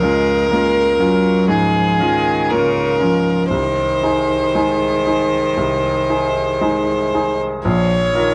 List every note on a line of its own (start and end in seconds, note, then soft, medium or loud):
0.00 3.55 C#2 medium
0.00 0.51 G#3 medium
0.00 0.47 C#4 soft
0.00 0.48 F4 soft
0.00 1.50 A#4 medium
0.51 0.99 G#3 medium
0.51 0.96 A#3 soft
0.51 0.97 C#4 soft
0.51 0.97 F4 medium
0.99 1.53 F#3 medium
0.99 1.45 C#4 soft
0.99 1.46 F4 soft
1.48 1.98 G#2 soft
1.48 2.02 F3 medium
1.48 2.51 G#4 medium
2.00 2.53 D#3 medium
2.00 2.46 C#4 soft
2.00 2.46 F4 soft
2.50 3.03 C#3 medium
2.50 2.98 A#3 soft
2.50 2.98 C#4 soft
2.50 2.98 F4 soft
2.50 3.50 A#4 soft
3.00 3.55 F3 soft
3.00 3.48 C#4 soft
3.00 3.48 F4 soft
3.50 4.02 C2 soft
3.50 7.45 D#3 medium
3.50 7.40 C5 soft
4.03 4.51 D#4 soft
4.03 4.52 G#4 soft
4.55 5.03 G#3 soft
4.55 5.03 D#4 soft
4.55 5.03 G#4 soft
5.07 5.55 D#4 soft
5.07 5.55 G#4 soft
5.57 6.08 C2 soft
6.10 6.57 D#4 soft
6.10 6.57 G#4 soft
6.61 7.09 G#3 soft
6.61 7.09 D#4 soft
6.61 7.10 G#4 soft
7.14 7.61 D#4 soft
7.14 7.61 G#4 soft
7.64 8.14 A#1 medium
7.64 8.12 F3 medium
7.64 8.34 C#5 medium
8.15 8.34 D#3 medium
8.15 8.34 F4 soft
8.15 8.34 A#4 soft